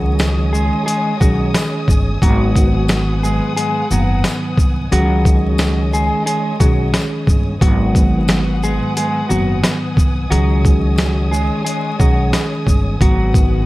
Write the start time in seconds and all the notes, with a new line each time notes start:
Already playing: C#2 D#3 F#3 G#3 C#4 F#4 G#4 C#5 D#5 G#5 D#6
0.19 cross-stick, snare, closed hi-hat, tambourine
0.53 G#3 G#4, shaker
0.86 G#3 G#4, closed hi-hat
1.20 B1 D#3 F#3 G#3 C#4 F#4 G#4, kick, shaker
1.54 cross-stick, snare, closed hi-hat, tambourine
1.88 G1, kick, shaker
2.20 G#1 G#2 D#3 F#3 B3 F#4 B4 F#5, kick, closed hi-hat
2.55 G#2 D#3 F#3 B3, kick, closed hi-hat, shaker
2.88 cross-stick, snare, closed hi-hat, tambourine
3.23 G#3 G#4, shaker
3.56 G#3 G#4, closed hi-hat
3.90 F#1 G#2 D#3 F#3 B3 F#4, shaker
4.24 cross-stick, snare, closed hi-hat, tambourine
4.58 C2, kick, shaker
4.91 C#2 D#3 F#3 G#3 C#4 F#4 G#4 C#5 D#5, closed hi-hat
5.25 D#3 G#3 C#4 G#4, kick, closed hi-hat, shaker
5.58 cross-stick, snare, closed hi-hat, tambourine
5.93 G#3 G#4, shaker
6.26 G#3 G#4, closed hi-hat
6.60 B1 D#3 F#3 G#3 C#4 F#4 G#4, kick, closed hi-hat, shaker
6.94 cross-stick, snare, closed hi-hat, tambourine
7.27 G1, kick, shaker
7.61 G#1 G#2 D#3 F#3 B3 F#4 B4 F#5 G#5 D#6, kick, closed hi-hat
7.94 G#2 D#3 F#3 B3, kick, closed hi-hat, shaker
8.28 cross-stick, snare, closed hi-hat, tambourine
8.63 G#3 G#4, shaker
8.97 G#3 G#4, closed hi-hat
9.29 F#1 G#2 D#3 F#3 B3 F#4, shaker
9.64 cross-stick, snare, closed hi-hat, tambourine
9.97 C2, kick, shaker
10.30 C#2 D#3 F#3 G#3 C#4 F#4 G#4 C#5 D#5, closed hi-hat
10.64 D#3 G#3 C#4 G#4, kick, closed hi-hat, shaker
10.98 cross-stick, snare, closed hi-hat, tambourine
11.31 G#3 G#4, shaker
11.65 G#3 G#4, closed hi-hat
11.99 B1 D#3 F#3 G#3 C#4 F#4 G#4, kick, shaker
12.33 cross-stick, snare, closed hi-hat, tambourine
12.67 G1, kick, shaker
12.99 G#1 G#2 D#3 F#3 B3 F#4 B4 F#5, kick, closed hi-hat
13.34 G#2 D#3 F#3 B3, kick, closed hi-hat, shaker